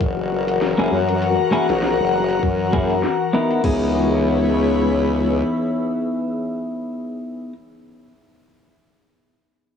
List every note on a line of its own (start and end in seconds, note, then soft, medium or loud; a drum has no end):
0.00 0.75 F#1 medium
0.00 3.60 E3 medium
0.00 0.75 E4 medium
0.00 3.60 F#4 medium
0.00 3.64 F#4 medium
0.00 3.60 A#4 medium
0.00 0.57 C#5 loud
0.00 3.64 F#5 loud
0.00 3.64 A#5 medium
0.00 kick loud
0.00 closed hi-hat soft
0.48 closed hi-hat medium
0.61 snare loud
0.61 closed hi-hat soft
0.78 0.89 F#1 medium
0.78 0.97 A#3 medium
0.78 0.97 C#4 medium
0.78 0.97 E4 medium
0.78 0.97 G#4 medium
0.91 1.36 F#2 medium
1.08 closed hi-hat medium
1.22 closed hi-hat medium
1.52 1.66 A#3 medium
1.52 1.66 C#4 medium
1.52 1.66 E4 medium
1.52 1.66 G#4 loud
1.69 1.97 A#1 medium
1.69 snare soft
1.69 closed hi-hat medium
1.82 snare loud
1.82 closed hi-hat soft
1.99 2.41 F#1 medium
2.30 closed hi-hat medium
2.43 3.01 F#2 medium
2.43 kick medium
2.43 closed hi-hat medium
2.73 2.94 A#3 medium
2.73 2.94 C#4 medium
2.73 2.94 E4 medium
2.73 2.94 G#4 medium
2.73 kick medium
2.90 closed hi-hat medium
3.03 snare loud
3.03 closed hi-hat soft
3.33 3.63 B3 medium
3.33 3.63 D#4 medium
3.33 3.63 E4 medium
3.33 3.91 A#4 medium
3.51 closed hi-hat medium
3.64 5.42 C#2 medium
3.64 6.83 E3 medium
3.64 7.53 B3 medium
3.64 6.83 C#4 medium
3.64 7.52 D#4 medium
3.64 7.53 E4 medium
3.64 6.82 G#4 medium
3.64 7.53 G#4 medium
3.64 6.82 B4 medium
3.64 6.82 E6 medium
3.64 kick loud
3.64 crash medium
3.74 6.82 C#5 medium
3.84 6.82 B5 medium